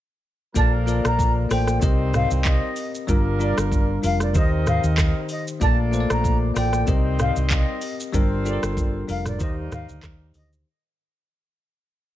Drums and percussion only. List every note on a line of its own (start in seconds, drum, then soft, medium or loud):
0.56 kick loud
0.56 shaker medium
0.88 shaker medium
1.05 cross-stick loud
1.05 shaker medium
1.19 kick loud
1.19 shaker medium
1.51 cross-stick loud
1.51 open hi-hat medium
1.51 shaker medium
1.67 cross-stick medium
1.67 shaker medium
1.82 kick loud
1.82 shaker medium
2.14 cross-stick medium
2.14 mid tom loud
2.14 shaker medium
2.31 shaker medium
2.45 kick loud
2.45 clap medium
2.45 shaker medium
2.76 open hi-hat medium
2.76 shaker medium
2.95 shaker medium
3.08 kick loud
3.08 shaker medium
3.40 shaker medium
3.58 cross-stick loud
3.58 shaker medium
3.72 kick loud
3.72 shaker medium
4.03 open hi-hat medium
4.03 shaker medium
4.20 cross-stick medium
4.20 shaker medium
4.35 kick loud
4.35 shaker medium
4.67 cross-stick medium
4.67 mid tom loud
4.67 shaker medium
4.84 shaker medium
4.98 kick loud
4.98 cross-stick medium
4.98 clap loud
4.98 shaker medium
5.29 open hi-hat medium
5.29 shaker medium
5.48 shaker medium
5.61 kick loud
5.61 shaker medium
5.93 shaker medium
6.10 cross-stick loud
6.10 shaker medium
6.24 kick loud
6.24 shaker medium
6.56 cross-stick loud
6.56 open hi-hat medium
6.56 shaker medium
6.73 cross-stick medium
6.73 shaker medium
6.87 kick loud
6.87 shaker medium
7.19 cross-stick loud
7.19 mid tom medium
7.19 shaker medium
7.36 shaker medium
7.50 kick loud
7.50 clap loud
7.50 shaker medium
7.81 open hi-hat medium
7.81 shaker medium
8.00 shaker medium
8.14 kick loud
8.14 shaker medium
8.46 shaker medium
8.63 cross-stick loud
8.63 shaker medium
8.77 kick loud
8.77 shaker medium
9.09 open hi-hat medium
9.09 shaker medium
9.26 cross-stick medium
9.26 mid tom medium
9.26 shaker medium
9.40 kick loud
9.40 shaker medium
9.72 cross-stick loud
9.72 mid tom loud
9.72 shaker medium
9.89 shaker medium
10.03 kick loud
10.03 cross-stick medium
10.03 clap loud
10.03 shaker medium
10.34 open hi-hat medium
10.34 shaker medium
10.53 shaker medium